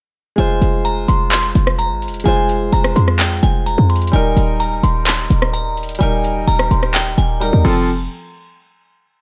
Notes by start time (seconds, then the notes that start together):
0.36 F1 G#3 F4 G#5, closed hi-hat
0.40 C5
0.62 F1, closed hi-hat
0.85 A#5, closed hi-hat
1.08 F1 C6, closed hi-hat
1.32 C6, clap, closed hi-hat
1.55 F1, closed hi-hat
1.67 cross-stick
1.79 A#5, closed hi-hat
1.90 G#1
2.02 closed hi-hat
2.08 F1, closed hi-hat
2.14 closed hi-hat
2.20 closed hi-hat
2.24 F1 G#3 F4 G#5, closed hi-hat
2.28 C5
2.49 closed hi-hat
2.72 F1 A#5, closed hi-hat
2.84 cross-stick
2.96 F2 C6, closed hi-hat
3.08 cross-stick
3.19 G5, clap, closed hi-hat
3.43 F1 G#5, closed hi-hat
3.66 A#5, closed hi-hat
3.78 F2
3.90 C6, closed hi-hat, open hi-hat
3.96 closed hi-hat
4.02 closed hi-hat
4.07 closed hi-hat
4.12 D#1 G3 D#4 G#5, closed hi-hat
4.16 A#4
4.37 D#1, closed hi-hat
4.60 A#5, closed hi-hat
4.83 D#1 C6, closed hi-hat
5.07 C6, clap, closed hi-hat
5.30 D#1, closed hi-hat
5.42 cross-stick
5.54 A#5, closed hi-hat
5.77 closed hi-hat
5.83 closed hi-hat
5.89 closed hi-hat
5.95 G3, closed hi-hat
6.01 D#1 D#4 A#4 G#5, closed hi-hat
6.24 closed hi-hat
6.47 D#1 A#5, closed hi-hat
6.59 cross-stick
6.71 D#1 C6, closed hi-hat
6.83 cross-stick
6.94 G5, clap, closed hi-hat
7.18 D#1 G#5, closed hi-hat
7.40 G3 D#4 A#4 A#5, closed hi-hat
7.53 D#2
7.65 F1 F3 C4 A4 C6, crash